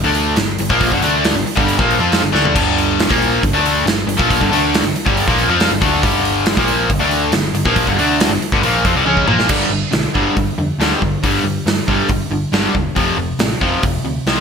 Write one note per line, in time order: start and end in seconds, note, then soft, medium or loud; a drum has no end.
0.04 0.34 D2 medium
0.04 0.36 D3 medium
0.04 0.36 A3 medium
0.04 0.36 D4 medium
0.15 open hi-hat medium
0.36 0.57 G1 medium
0.36 0.54 G2 medium
0.36 0.54 D3 medium
0.36 snare loud
0.36 open hi-hat medium
0.58 0.69 G1 medium
0.58 0.70 G2 medium
0.58 0.69 D3 medium
0.58 open hi-hat medium
0.70 0.90 A#1 loud
0.70 0.91 A#2 medium
0.70 0.91 F3 loud
0.70 0.91 A#3 medium
0.70 kick loud
0.81 kick medium
0.81 open hi-hat medium
0.91 1.01 G1 medium
0.91 1.01 G2 medium
0.91 1.01 D3 loud
0.91 kick medium
1.02 1.32 D2 medium
1.02 1.34 D3 medium
1.02 1.34 A3 medium
1.02 1.35 D4 loud
1.02 open hi-hat medium
1.24 snare loud
1.24 open hi-hat medium
1.34 1.44 G1 medium
1.34 1.45 G2 medium
1.34 1.46 D3 medium
1.45 muted picked electric bass stroke soft
1.45 muted overdriven electric guitar stroke medium
1.45 open hi-hat medium
1.55 1.77 G1 medium
1.55 1.77 G2 medium
1.55 1.77 D3 loud
1.55 1.78 G3 medium
1.55 kick medium
1.68 open hi-hat medium
1.78 1.99 A#1 medium
1.78 1.99 A#2 medium
1.78 1.98 F3 medium
1.78 2.00 A#3 medium
1.78 kick loud
1.91 open hi-hat medium
1.99 2.20 F2 medium
1.99 2.21 F3 medium
1.99 2.21 C4 medium
1.99 2.22 F4 loud
2.12 snare medium
2.12 open hi-hat medium
2.21 2.32 G1 medium
2.21 2.32 G2 medium
2.21 2.31 D3 medium
2.32 2.53 D2 medium
2.32 2.54 D3 medium
2.32 2.54 A3 medium
2.32 2.54 D4 loud
2.32 snare medium
2.45 floor tom medium
2.54 3.05 G1 medium
2.54 3.08 G2 medium
2.54 3.08 D3 loud
2.54 3.08 G3 medium
2.54 kick loud
2.54 crash medium
2.78 open hi-hat medium
3.00 snare loud
3.00 open hi-hat medium
3.09 3.40 A#1 medium
3.09 3.41 A#2 medium
3.09 3.41 F3 medium
3.09 3.41 A#3 loud
3.09 kick loud
3.22 open hi-hat medium
3.42 3.51 G1 medium
3.42 3.53 G2 medium
3.42 3.52 D3 medium
3.42 kick loud
3.42 open hi-hat medium
3.52 3.82 D2 loud
3.52 3.85 D3 medium
3.52 3.85 A3 medium
3.52 3.85 D4 medium
3.65 open hi-hat medium
3.84 4.05 G1 medium
3.84 4.03 G2 medium
3.84 4.03 D3 medium
3.84 open hi-hat medium
3.88 snare loud
4.06 4.16 G1 medium
4.06 4.18 G2 medium
4.06 4.17 D3 medium
4.06 open hi-hat medium
4.18 4.39 A#1 medium
4.18 4.39 A#2 loud
4.18 4.39 F3 loud
4.18 4.39 A#3 loud
4.18 kick loud
4.30 kick medium
4.30 open hi-hat medium
4.40 4.50 G1 medium
4.40 4.50 G2 medium
4.40 4.50 D3 loud
4.40 kick medium
4.50 4.80 D2 medium
4.50 4.82 D3 medium
4.50 4.83 A3 loud
4.50 4.83 D4 medium
4.50 open hi-hat medium
4.74 snare loud
4.74 open hi-hat medium
4.83 4.93 G1 medium
4.83 4.94 G2 medium
4.83 4.94 D3 medium
4.94 muted picked electric bass stroke soft
4.94 muted overdriven electric guitar stroke medium
4.94 open hi-hat medium
5.05 5.25 G1 loud
5.05 5.26 G2 loud
5.05 5.26 D3 loud
5.05 5.26 G3 loud
5.05 kick loud
5.17 open hi-hat medium
5.27 5.47 A#1 loud
5.27 5.48 A#2 medium
5.27 5.48 F3 loud
5.27 5.48 A#3 loud
5.27 kick loud
5.39 open hi-hat soft
5.48 5.68 F2 loud
5.48 5.69 F3 medium
5.48 5.70 C4 medium
5.48 5.70 F4 loud
5.60 snare loud
5.60 open hi-hat medium
5.70 5.79 G1 medium
5.70 5.81 G2 medium
5.70 5.80 D3 medium
5.81 6.01 D2 loud
5.81 6.02 D3 loud
5.81 6.02 A3 loud
5.81 6.02 D4 loud
5.81 kick loud
5.81 open hi-hat medium
6.02 6.53 G1 medium
6.02 6.55 G2 medium
6.02 6.56 D3 loud
6.02 6.56 G3 loud
6.02 kick loud
6.02 open hi-hat medium
6.25 open hi-hat medium
6.46 snare loud
6.46 open hi-hat medium
6.57 6.87 A#1 medium
6.57 6.88 A#2 medium
6.57 6.89 F3 loud
6.57 6.89 A#3 loud
6.57 kick loud
6.68 open hi-hat medium
6.90 6.99 G1 medium
6.90 7.00 G2 medium
6.90 6.98 D3 medium
6.90 kick loud
6.90 open hi-hat medium
6.99 7.30 D2 medium
6.99 7.31 D3 medium
6.99 7.32 A3 medium
6.99 7.32 D4 medium
7.11 open hi-hat medium
7.31 7.52 G1 medium
7.31 7.50 G2 medium
7.31 7.50 D3 medium
7.31 snare loud
7.31 open hi-hat medium
7.53 7.63 G1 medium
7.53 7.65 G2 medium
7.53 7.65 D3 medium
7.53 open hi-hat medium
7.65 7.85 A#1 loud
7.65 7.86 A#2 medium
7.65 7.86 F3 medium
7.65 7.86 A#3 loud
7.65 kick loud
7.76 kick loud
7.76 open hi-hat medium
7.87 7.96 G1 medium
7.87 7.97 G2 medium
7.87 7.97 D3 medium
7.87 kick medium
7.97 8.27 D2 medium
7.97 8.30 D3 loud
7.97 8.30 A3 medium
7.97 8.30 D4 loud
7.97 open hi-hat medium
8.20 snare loud
8.20 open hi-hat loud
8.29 8.39 G1 medium
8.29 8.41 G2 medium
8.29 8.41 D3 medium
8.42 muted overdriven electric guitar stroke medium
8.42 open hi-hat medium
8.52 8.61 G1 loud
8.52 8.62 G2 medium
8.52 8.63 D3 loud
8.52 kick loud
8.61 8.82 A#1 medium
8.61 8.84 A#2 medium
8.61 8.84 F3 medium
8.61 8.84 A#3 medium
8.61 open hi-hat medium
8.85 8.94 F2 medium
8.85 8.95 F3 medium
8.85 8.95 C4 medium
8.85 kick loud
8.85 open hi-hat medium
8.95 9.05 C2 medium
8.95 9.05 C3 medium
8.95 9.06 G3 loud
9.05 9.26 C#2 medium
9.05 9.26 C#3 medium
9.05 9.27 G#3 loud
9.05 9.27 C#4 loud
9.05 high tom medium
9.17 kick medium
9.27 9.47 A#1 medium
9.27 9.48 A#2 medium
9.27 9.48 F3 medium
9.27 9.49 A#3 loud
9.27 mid tom medium
9.39 snare medium
9.49 9.63 G1 medium
9.49 9.69 G2 medium
9.49 9.69 D3 medium
9.49 9.70 G3 medium
9.49 kick medium
9.49 crash loud
9.70 9.84 G1 medium
9.70 9.90 G2 medium
9.70 9.90 D3 medium
9.92 10.06 B1 medium
9.92 10.11 G2 medium
9.92 10.12 D3 medium
9.92 snare loud
9.92 open hi-hat soft
10.15 10.28 G1 medium
10.15 10.35 G2 medium
10.15 10.35 D3 medium
10.15 10.35 G3 medium
10.15 kick medium
10.36 10.50 G1 medium
10.36 10.55 G2 medium
10.36 10.56 D3 medium
10.36 kick medium
10.36 open hi-hat soft
10.58 10.71 F2 medium
10.58 10.77 G2 medium
10.58 10.77 D3 medium
10.79 10.92 D2 loud
10.79 11.00 G2 medium
10.79 11.00 D3 medium
10.79 11.00 G3 medium
10.79 snare medium
10.79 open hi-hat soft
11.02 11.15 G1 medium
11.02 11.21 G2 medium
11.02 11.21 D3 medium
11.02 kick medium
11.23 11.37 G1 loud
11.23 11.43 G2 medium
11.23 11.44 D3 medium
11.23 11.44 G3 loud
11.23 kick loud
11.23 open hi-hat medium
11.44 11.57 G2 medium
11.44 11.64 G2 medium
11.44 11.64 D3 medium
11.66 11.79 G2 medium
11.66 11.86 G2 medium
11.66 11.86 D3 medium
11.66 snare loud
11.66 open hi-hat medium
11.78 snare soft
11.88 12.01 G1 medium
11.88 12.08 G2 medium
11.88 12.09 D3 medium
11.88 12.09 G3 medium
11.88 kick medium
12.09 12.23 G1 medium
12.09 12.29 G2 medium
12.09 12.29 D3 medium
12.09 kick loud
12.09 open hi-hat medium
12.30 12.44 G1 medium
12.30 12.51 G2 medium
12.30 12.51 D3 medium
12.52 12.66 G1 medium
12.52 12.73 G2 medium
12.52 12.73 D3 medium
12.52 12.74 G3 medium
12.52 snare medium
12.52 open hi-hat soft
12.74 12.88 E1 medium
12.74 12.94 G2 medium
12.74 12.94 D3 medium
12.74 kick medium
12.95 13.10 F1 medium
12.95 13.16 F2 medium
12.95 13.16 C3 medium
12.95 13.17 F3 loud
12.95 kick loud
12.95 open hi-hat soft
13.17 13.31 F1 medium
13.17 13.37 F2 medium
13.17 13.37 C3 medium
13.39 13.52 A1 medium
13.39 13.59 F2 medium
13.39 13.59 C3 medium
13.39 snare loud
13.39 open hi-hat medium
13.60 13.75 F1 medium
13.60 13.81 F2 medium
13.60 13.82 C3 medium
13.60 13.82 F3 medium
13.60 kick medium
13.83 13.97 F1 medium
13.83 14.03 F2 medium
13.83 14.03 C3 medium
13.83 kick loud
13.83 open hi-hat medium
14.04 14.18 D2 medium
14.04 14.24 F2 medium
14.04 14.24 C3 medium
14.26 14.40 C2 medium
14.26 14.40 F2 medium
14.26 14.40 C3 medium
14.26 14.40 F3 loud
14.26 snare medium
14.26 open hi-hat soft